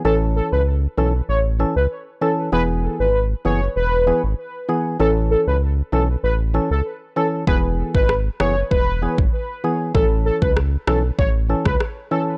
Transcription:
<<
  \new Staff \with { instrumentName = "Soft synth lead" } { \time 4/4 \key a \major \tempo 4 = 97 a'16 r16 a'16 b'16 r8 a'16 r16 cis''16 r8 b'16 r8 a'16 r16 | b'16 r8 b'8 r16 cis''8 b'8. r4 r16 | a'16 r16 a'16 b'16 r8 a'16 r16 b'16 r8 a'16 r8 a'16 r16 | b'16 r8 b'8 r16 cis''8 b'8. r4 r16 |
a'16 r16 a'16 b'16 r8 a'16 r16 cis''16 r8 b'16 r8 a'16 r16 | }
  \new Staff \with { instrumentName = "Synth stab" } { \time 4/4 \key a \major <e cis' a'>4 r8 <e cis' a'>16 r8. <e cis' a'>16 r8. <e cis' a'>8 | <e b gis'>4 r8 <e b gis'>16 r8. <e b gis'>16 r8. <e b gis'>8 | <e cis' a'>4 r8 <e cis' a'>16 r8. <e cis' a'>16 r8. <e cis' a'>8 | <e b gis'>4 r8 <e b gis'>16 r8. <e b gis'>16 r8. <e b gis'>8 |
<e cis' a'>4 r8 <e cis' a'>16 r8. <e cis' a'>16 r8. <e cis' a'>8 | }
  \new Staff \with { instrumentName = "Analog synth bass" } { \clef bass \time 4/4 \key a \major a,,8. cis,8. b,,8 a,,8. cis,16 r4 | e,,8. gis,,8. fis,,8 e,,8. gis,,16 r4 | a,,8. cis,8. b,,8 a,,8. cis,16 r4 | e,,8. gis,,8. fis,,8 e,,8. gis,,16 r4 |
a,,8. cis,8. b,,8 a,,8. cis,16 r4 | }
  \new DrumStaff \with { instrumentName = "Drums" } \drummode { \time 4/4 r4 r4 r4 r4 | r4 r4 r4 r4 | r4 r4 r4 r4 | bd8. bd16 ss8 ss8 bd8. bd16 r4 |
bd8. bd16 ss8 ss8 bd8. <bd ss>16 ss4 | }
>>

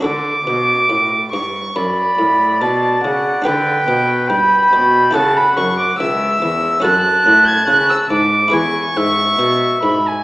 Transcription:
<<
  \new Staff \with { instrumentName = "Violin" } { \time 4/4 \key d \major \tempo 4 = 71 d'''4. cis'''8 b''4 a''8 fis''8 | g''4 b''4 a''16 b''16 cis'''16 d'''16 e'''4 | \key e \mixolydian fis'''8. gis'''16 fis'''16 e'''16 d'''8 cis'''4. b''16 gis''16 | }
  \new Staff \with { instrumentName = "Oboe" } { \time 4/4 \key d \major r2 d''2 | b'4 g''4 fis''4 e''4 | \key e \mixolydian a''4. r8 gis''8 e''4. | }
  \new Staff \with { instrumentName = "Harpsichord" } { \time 4/4 \key d \major <d' fis' a'>1 | <d' g' b'>2 <e' g' a'>2 | \key e \mixolydian <cis' fis' a'>2 <e' gis' b'>2 | }
  \new Staff \with { instrumentName = "Harpsichord" } { \clef bass \time 4/4 \key d \major d8 b,8 a,8 g,8 fis,8 a,8 b,8 cis8 | d8 b,8 g,8 b,8 cis8 fis,8 cis,8 e,8 | \key e \mixolydian fis,8 a,8 cis8 gis,8 e,8 gis,8 b,8 gis,8 | }
  \new Staff \with { instrumentName = "Cello" } { \clef bass \time 4/4 \key d \major d8 b,8 a,8 g,8 fis,8 a,8 b,8 cis8 | d8 b,8 g,8 b,8 cis8 fis,8 cis,8 e,8 | \key e \mixolydian fis,8 a,8 cis8 gis,8 e,8 gis,8 b,8 gis,8 | }
>>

